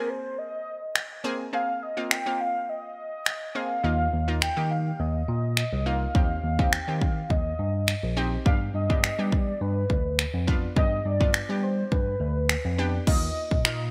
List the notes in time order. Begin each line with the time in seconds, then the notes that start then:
Already playing: A#3 C4 G#4 A#4
0.09 C5
0.38 D#5
0.96 finger snap
1.24 A#3 C4 G#4
1.53 A#3 C4 G#4 F5
1.83 D#5
1.97 A#3 C4 F4
2.11 G5, finger snap
2.26 A#3 C4 F4
2.41 F5
2.69 D#5
3.26 finger snap
3.55 A#3 C4 G#4 F5
3.84 D#2 A#3 D#4 F4
4.13 D#2
4.28 A#3 D#4 F4
4.42 G5, finger snap
4.56 D#3 A#3 D#4 G4
4.71 F5
4.99 D#2 D#5
5.28 A#2
5.57 finger snap
5.73 C2
5.86 A#3 D#4 F4 F5
6.15 D#2 C4 D#4 G4, kick
6.44 D#2
6.59 C4 D#4 G4, kick
6.73 G5, finger snap
6.88 D#3 C4 D#4 G4
7.01 F5, kick
7.30 D#2 D#5, kick
7.59 G2
7.88 finger snap
8.03 A#1
8.17 C4 D#4 G4
8.45 G2 B3 D4 G4 F5, kick
8.75 G2 D#5
8.90 B3 D4 G4, kick
9.04 finger snap
9.19 G3 B3 D4 G4
9.32 D5, kick
9.61 G2 B4
9.90 D2, kick
10.19 finger snap
10.34 F2
10.47 B3 D4 F4, kick
10.76 G2 B3 D4 G4 D#5, kick
11.05 G2 D5
11.20 B3 D4 F4, kick
11.34 finger snap
11.49 G3 B3 D4 G4
11.63 C5
11.92 G2 B4, kick
12.21 D2
12.49 finger snap
12.65 F2
12.78 B3 D4 G4
13.07 D#2 A#3 D#4 F4 D#5, kick, crash
13.51 A#2, kick
13.65 A#3 D#4 F4 D#5, finger snap